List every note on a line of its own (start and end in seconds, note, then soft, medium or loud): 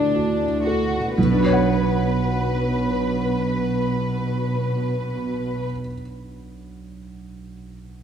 0.00 1.20 A2 soft
0.00 1.12 D3 soft
0.00 0.45 D4 soft
0.00 0.62 D4 medium
0.00 1.18 D4 soft
0.00 0.15 F#4 soft
0.00 1.23 F#4 soft
0.00 0.67 A4 soft
0.00 1.19 A4 soft
0.14 1.05 D2 soft
0.14 0.97 F#4 soft
0.66 1.17 F#4 soft
0.66 1.18 A4 soft
1.17 5.66 B1 soft
1.17 5.64 B2 soft
1.17 5.65 B2 soft
1.17 5.65 B4 soft
1.24 5.72 B2 soft
1.24 5.72 B3 soft
1.31 5.79 D4 soft
1.38 5.86 F#4 soft
1.38 5.87 F#4 soft
1.45 5.93 C#5 soft
1.52 6.00 F#5 soft